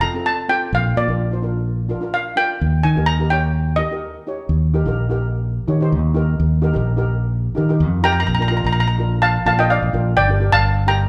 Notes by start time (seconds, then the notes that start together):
0.01 C4 F4 A4 A#5
0.14 C4 F4 A4
0.26 A5
0.49 C4 F4 A4 G5
0.73 A#1 F5
0.96 A#2 D5
1.08 A#1 D4 F4 A#4
1.31 D4 F4 C5
1.42 D4 F4 A#4
1.89 D4 F4 A#4
2.01 D4 F4 A#4
2.14 F5
2.36 D4 F4 A#4 G5
2.61 D#2
2.83 D#3 G#5
2.96 D#2 D#4 G4 A#4
3.06 A#5
3.19 D#4 G4 A#4
3.30 D#4 G4 C#5 G5
3.76 D#4 G4 A#4 D#5
3.91 D#4 G4 A#4
4.27 D#4 G4 C#5
4.49 D#2
4.74 D#4 G4 A#4
4.85 A#1 D#4 G4 A#4
5.10 D#4 G4 A#4
5.68 D#3 D#4 G4 C#5
5.81 D#4 G4 C5
5.92 D#2
6.14 D#4 G4 A#4
6.40 D#2
6.62 D#4 G4 A#4
6.73 A#1 D#4 G4 A#4
6.97 D#4 G4 A#4
7.55 D#3 D#4 G4 A#4
7.69 D#4 G4 A#4
7.80 F2
8.03 D#4 G4 A#4 G5 A#5
8.12 A#5
8.20 A#5
8.27 A#1 A#5
8.35 A#5
8.39 D4 F4 A#4 A#5
8.48 D4 F4 A#5
8.52 A#4
8.57 A#5
8.64 A#1 A#5
8.72 A#5
8.80 A#5
8.88 A#5
8.98 D4 F4 A#4
9.22 F5 A5
9.46 A#1 D4 F4 A#4 F5 A5
9.58 D4 F4 A#4 D#5 G5
9.70 D5 F5
9.83 A#1
9.93 A#1 D4 F4 A#4
10.17 G1 D5 G5
10.28 D4 G4 A#4
10.40 D4 G4 A#4
10.52 G1 F5 A5
10.87 D4 G4 A#4 G5 A#5